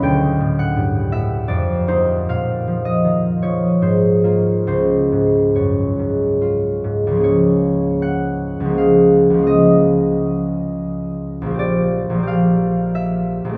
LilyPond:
<<
  \new Staff \with { instrumentName = "Harp" } { \time 3/4 \key des \major \tempo 4 = 82 g''8. ges''8. e''8 d''8 c''8 | f''8. ees''8. des''8 c''4 | c''4 des''2 | des''4 ges''4 f''4 |
ees''2. | d''4 f''4 fes''4 | }
  \new Staff \with { instrumentName = "Harp" } { \clef bass \time 3/4 \key des \major <d, fes'>8 a,8 g,8 a,8 f,8 <bes ees'>8 | bes,8 f8 ees8 f8 aes,8 <bes f'>8 | des,8 aes,8 ges,8 aes,8 f'8 aes,8 | <des, f bes aes'>2 <des, f bes aes'>4 |
<des, f aes f'>2. | <bes,, f bes g'>4 <bes,, f bes g'>2 | }
>>